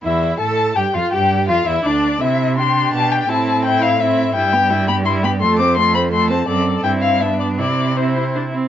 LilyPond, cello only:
\new Staff \with { instrumentName = "Cello" } { \clef bass \time 3/4 \key c \major \tempo 4 = 167 e,4 a,4 g,8 f,8 | g,4 f,8 e,8 d,4 | c2 b,4 | a,2. |
g,2. | f,2. | fis,4 g,2 | c2~ c8 r8 | }